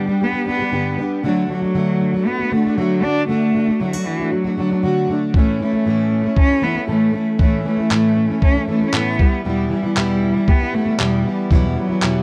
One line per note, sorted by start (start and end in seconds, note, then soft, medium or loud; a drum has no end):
0.00 0.25 G3 medium
0.00 0.38 G3 medium
0.00 0.46 B3 medium
0.00 0.98 D4 medium
0.00 0.20 G4 medium
0.07 0.34 G3 soft
0.07 0.34 B3 soft
0.07 0.32 D4 soft
0.07 0.31 G4 soft
0.21 0.48 B3 medium
0.21 0.72 G4 medium
0.32 0.45 G3 soft
0.32 0.46 B3 soft
0.32 0.47 D4 soft
0.32 0.46 G4 soft
0.46 0.59 G3 medium
0.46 0.60 B3 medium
0.46 0.95 B3 medium
0.46 0.59 D4 medium
0.46 0.58 G4 medium
0.59 0.71 G3 soft
0.59 0.72 B3 soft
0.59 0.72 D4 soft
0.59 0.72 G4 medium
0.71 0.98 G2 medium
0.71 0.98 D3 medium
0.71 0.96 G3 medium
0.71 0.97 B3 medium
0.71 0.98 D4 medium
0.71 0.99 G4 medium
0.97 1.23 G3 soft
0.97 1.24 B3 medium
0.97 1.24 D4 medium
0.97 1.25 G4 medium
1.23 1.48 D3 medium
1.23 1.48 F#3 medium
1.23 1.49 A3 medium
1.23 1.50 D4 medium
1.23 1.50 F#4 medium
1.49 1.62 D3 soft
1.49 2.28 F#3 medium
1.49 1.63 A3 medium
1.49 1.62 D4 medium
1.49 1.60 F#4 medium
1.62 1.74 A3 soft
1.62 1.75 D4 soft
1.62 1.75 F#4 soft
1.74 2.13 D3 medium
1.74 2.14 A3 medium
1.74 2.14 D4 medium
1.74 2.12 F#4 medium
2.01 3.02 D4 medium
2.13 2.41 A3 soft
2.13 2.40 D4 soft
2.13 2.38 F#4 soft
2.26 2.54 B3 medium
2.26 2.76 F#4 medium
2.39 2.52 A3 soft
2.39 2.52 D4 soft
2.39 2.52 F#4 soft
2.51 2.65 D3 medium
2.51 2.79 A3 medium
2.51 2.65 A3 medium
2.51 2.65 D4 medium
2.51 2.64 F#4 medium
2.65 2.77 A3 soft
2.65 2.77 D4 medium
2.65 2.78 F#4 soft
2.77 3.01 D3 medium
2.77 3.05 F#3 medium
2.77 3.02 A3 medium
2.77 3.03 D4 medium
2.77 3.04 F#4 medium
3.02 3.27 D3 medium
3.02 3.28 A3 medium
3.02 3.28 D4 medium
3.02 3.29 D4 medium
3.02 3.29 F#4 medium
3.28 3.53 D3 medium
3.28 3.82 A3 loud
3.28 3.54 A3 medium
3.28 3.55 D4 medium
3.28 3.55 F#4 medium
3.54 3.67 D3 medium
3.54 3.68 A3 medium
3.54 3.68 D4 medium
3.54 3.66 F#4 medium
3.67 3.80 A3 soft
3.67 3.81 D4 soft
3.67 3.80 F#4 soft
3.80 3.93 D3 medium
3.80 4.07 F#3 medium
3.80 3.94 A3 medium
3.80 3.94 D4 medium
3.80 3.93 E4 medium
3.80 3.92 F#4 medium
3.94 4.20 A3 soft
3.94 4.19 D4 soft
3.94 4.18 F#4 soft
4.06 4.33 E3 medium
4.06 5.07 D4 soft
4.19 4.46 A3 soft
4.19 4.45 D4 soft
4.19 4.43 F#4 soft
4.31 4.57 F#3 medium
4.31 4.82 F#4 medium
4.44 4.57 A3 soft
4.44 4.58 D4 soft
4.44 4.57 F#4 soft
4.57 4.70 D3 medium
4.57 5.05 F#3 medium
4.57 4.70 A3 medium
4.57 4.71 D4 medium
4.57 4.69 F#4 medium
4.70 4.83 A3 soft
4.70 4.83 D4 soft
4.70 4.83 F#4 soft
4.83 5.07 D3 medium
4.83 5.08 A3 medium
4.83 5.09 D4 medium
4.83 5.10 F#4 medium
5.08 5.34 D3 medium
5.08 5.35 A3 medium
5.08 5.35 D4 medium
5.08 5.36 F#4 medium
5.34 5.60 A2 medium
5.34 5.59 E3 medium
5.34 5.60 A3 medium
5.34 5.59 A3 medium
5.34 5.61 C#4 medium
5.34 5.61 E4 medium
5.34 kick medium
5.60 5.73 E3 soft
5.60 5.73 A3 medium
5.60 6.34 A3 medium
5.60 5.73 C#4 medium
5.60 5.72 E4 medium
5.73 5.86 A3 soft
5.73 5.86 C#4 soft
5.73 5.86 E4 soft
5.85 6.24 A2 medium
5.85 6.25 E3 medium
5.85 6.25 A3 medium
5.85 6.25 C#4 medium
5.85 6.23 E4 medium
5.85 6.35 A4 medium
6.11 7.13 C#4 soft
6.24 6.51 A3 soft
6.24 6.50 C#4 soft
6.24 6.48 E4 medium
6.37 6.65 C#4 medium
6.37 6.87 A4 medium
6.37 kick medium
6.49 6.62 A3 soft
6.49 6.63 C#4 soft
6.49 6.62 E4 soft
6.62 6.75 E3 soft
6.62 6.76 A3 medium
6.62 6.88 B3 medium
6.62 6.75 C#4 medium
6.62 6.74 E4 medium
6.75 6.88 A3 soft
6.75 6.88 C#4 soft
6.75 6.88 E4 soft
6.88 7.14 A2 medium
6.88 7.11 E3 medium
6.88 7.24 A3 medium
6.88 7.12 A3 medium
6.88 7.13 C#4 medium
6.88 7.14 E4 medium
6.88 7.90 A4 medium
7.13 7.38 E3 medium
7.13 7.39 A3 medium
7.13 7.39 C#4 medium
7.13 7.40 E4 medium
7.39 7.65 A2 medium
7.39 7.63 E3 medium
7.39 7.65 A3 medium
7.39 7.64 A3 medium
7.39 7.65 C#4 medium
7.39 7.66 E4 medium
7.39 kick medium
7.65 7.78 E3 medium
7.65 7.79 A3 medium
7.65 8.39 A3 medium
7.65 7.78 C#4 medium
7.65 7.76 E4 medium
7.77 7.90 A3 soft
7.77 7.91 C#4 soft
7.77 7.90 E4 soft
7.90 8.29 A2 medium
7.90 8.30 E3 medium
7.90 8.30 A3 medium
7.90 8.29 C#4 medium
7.90 8.27 E4 medium
7.90 8.41 A4 medium
7.90 clap medium
8.16 9.24 C#4 medium
8.28 8.56 A3 soft
8.28 8.55 C#4 soft
8.28 8.53 E4 soft
8.42 8.67 C#4 medium
8.42 8.93 A4 medium
8.42 kick medium
8.54 8.67 A3 soft
8.54 8.68 C#4 soft
8.54 8.68 E4 soft
8.67 8.81 E3 medium
8.67 8.81 A3 medium
8.67 8.89 A3 medium
8.67 8.81 C#4 medium
8.67 8.79 E4 medium
8.80 8.93 A3 soft
8.80 8.93 C#4 soft
8.80 8.93 E4 soft
8.88 8.97 C#4 medium
8.93 9.19 A2 medium
8.93 9.18 E3 medium
8.93 9.19 A3 medium
8.93 9.33 B3 medium
8.93 9.20 C#4 medium
8.93 9.20 E4 medium
8.93 9.25 A4 medium
8.93 clap loud
9.19 9.44 E3 medium
9.19 9.45 G3 medium
9.19 9.45 B3 medium
9.19 9.45 E4 medium
9.19 kick loud
9.45 9.70 E2 medium
9.45 9.71 B2 medium
9.45 9.68 E3 medium
9.45 9.70 G3 medium
9.45 9.71 B3 medium
9.45 9.71 E4 medium
9.70 9.83 E3 medium
9.70 9.83 G3 medium
9.70 10.51 G3 medium
9.70 9.83 B3 medium
9.70 9.82 E4 medium
9.83 9.95 E3 soft
9.83 9.96 G3 soft
9.83 9.96 B3 soft
9.83 9.96 E4 soft
9.96 10.35 E2 medium
9.96 10.35 B2 medium
9.96 10.35 E3 medium
9.96 10.35 G3 medium
9.96 10.34 B3 medium
9.96 10.33 E4 medium
9.96 10.48 G4 medium
9.96 clap loud
10.23 11.24 E4 medium
10.34 10.62 E3 soft
10.34 10.61 G3 soft
10.34 10.60 B3 soft
10.34 10.58 E4 medium
10.48 10.76 B3 medium
10.48 10.99 G4 medium
10.48 kick loud
10.60 10.72 E3 soft
10.60 10.73 G3 soft
10.60 10.74 B3 soft
10.60 10.73 E4 soft
10.73 10.86 E3 medium
10.73 10.86 G3 medium
10.73 11.00 A3 medium
10.73 10.85 B3 medium
10.73 10.84 E4 medium
10.85 10.98 E3 soft
10.85 10.98 G3 soft
10.85 10.99 B3 soft
10.85 10.99 E4 medium
10.98 11.24 E2 medium
10.98 11.25 B2 medium
10.98 11.23 E3 medium
10.98 11.24 G3 medium
10.98 11.36 G3 medium
10.98 11.25 B3 medium
10.98 11.25 E4 medium
10.98 12.01 G4 medium
10.98 clap loud
11.24 11.50 E3 medium
11.24 11.51 G3 medium
11.24 11.51 B3 medium
11.24 11.51 E4 medium
11.50 11.76 E2 medium
11.50 11.76 B2 medium
11.50 11.75 E3 medium
11.50 11.64 F#3 medium
11.50 11.76 G3 medium
11.50 11.77 B3 medium
11.50 11.77 E4 medium
11.50 kick medium
11.76 11.89 E3 medium
11.76 12.23 F#3 medium
11.76 11.89 G3 medium
11.76 11.88 B3 medium
11.76 11.88 E4 medium
11.89 12.01 E3 soft
11.89 12.02 G3 soft
11.89 12.02 B3 soft
11.89 12.02 E4 soft
12.01 12.23 E2 medium
12.01 12.23 B2 medium
12.01 12.23 E3 medium
12.01 12.23 G3 medium
12.01 12.23 B3 medium
12.01 12.23 E4 medium
12.01 12.23 G4 medium
12.01 clap loud